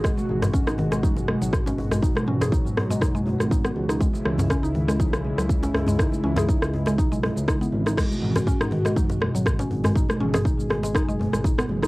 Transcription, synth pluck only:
X:1
M:4/4
L:1/16
Q:"Swing 16ths" 1/4=121
K:G#m
V:1 name="Synth pluck"
G, z3 C D D, G, D z2 F, z C z G, | D z C G D z2 G, D G, z2 D B, z D | G, z3 C D D, G, D z2 F, z C z G, | D z C G D z2 G, D G, z2 D B, z D |
G, z3 C D D, G, D z2 F, z C z G, | D z C G D z2 G, D G, z2 D B, z D |]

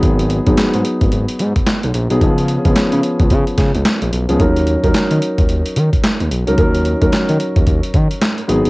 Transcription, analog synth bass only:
X:1
M:4/4
L:1/16
Q:"Swing 16ths" 1/4=110
K:Ebm
V:1 name="Analog synth bass" clef=bass
A,,,3 A,,, A,, A,, z A,,, A,,, z A,, z2 C,, B,,, C,, | D,,3 D,, D, D, z D,, D, z D, D,, z B,,, C,, D,, | E,,3 E,, E, E, z E,, E,, z E, z2 E,, C,, D,, | E,,3 E,, E, E, z E,, E,, z E, z3 A,,, G,,, |]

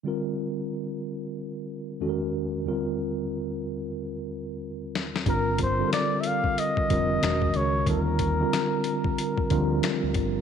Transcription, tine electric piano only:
X:1
M:4/4
L:1/16
Q:"Swing 16ths" 1/4=92
K:Gm
V:1 name="Tine electric piano"
[D,G,CFB]12 [=E,,^D,^G,^C^FAB]4 | [E,,D,G,CFB]16 | [D,G,CFB]3 [D,G,CFAB]6 z [D,G,CFB]2 [^D,^F,^G,^C^FB]3 z | [D,G,CFB]3 [D,G,CFB]6 z [D,F,G,CFB]4- [D,F,G,CFB] z |]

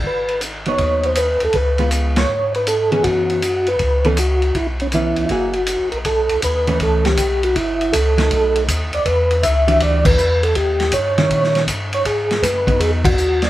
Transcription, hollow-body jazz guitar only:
X:1
M:4/4
L:1/8
Q:"Swing" 1/4=160
K:C#dor
V:1 name="Hollow-body jazz guitar"
z3 [F,B,D]3 z2 | z [G,B,^E]3 z3 [=E,B,C]- | [E,B,C]2 z3 [E,B,C] z2 | z2 [E,B,C]2 [F,A,EG] z3 |
[K:Bmix] z3 [E,A,C]3 z2 | z3 [F,A,D]3 z2 | z3 [E,=G,=DF]3 z2 | z3 [D,=G,CE]3 z2 |
z3 [F,B,D]3 z2 |]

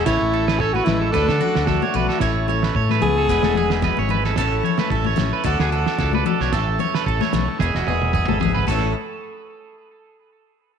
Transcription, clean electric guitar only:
X:1
M:4/4
L:1/16
Q:"Swing 16ths" 1/4=111
K:A
V:1 name="Clean electric guitar"
c2 A B c B2 A B A F2 A c B A | c2 c B c B2 A B A G2 B c B A | A2 c B A c2 B A G A2 A B A c | A2 c B A c2 z G F G2 G A G B |
A2 z12 z2 |]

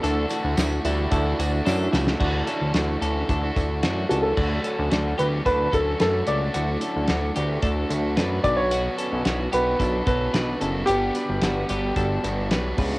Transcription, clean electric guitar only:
X:1
M:4/4
L:1/8
Q:1/4=111
K:D
V:1 name="Clean electric guitar"
[DA] [A,F]2 [G,E] [A,E] [A,F] [DA] [A,F] | [A,F] [CA] [A,F] [CA] [DA]2 [A,F] [CA] | [A,F] [CA] [A,F] [B,G] [DA] [CA] [DB] [CA] | [A,F] [CA] [A,F] [B,G] [DA]2 [DB] [DB] |
[B,F] [CA] [B,F] [B,G] [DA] [CA] [DB] [CA] | [B,G] [DB] [B,F] [B,G] [DA]2 [DB] [DB] |]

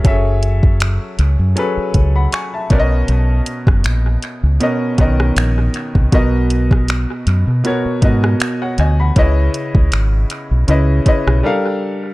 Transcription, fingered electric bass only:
X:1
M:4/4
L:1/16
Q:"Swing 16ths" 1/4=79
K:B
V:1 name="Fingered electric bass" clef=bass
F,,,4- F,,, z C,, F,, z2 C,,2 z2 B,,,2 | B,,,2 z F,,, A,,,2 z C,, z2 B,,,2 A,,,2 z =C,, | B,,,4- B,,, z F,, B,, z2 G,,2 z2 =D,,2 | C,,2 z C,, G,,,2 z B,,, C,,2 z B,,, z4 |]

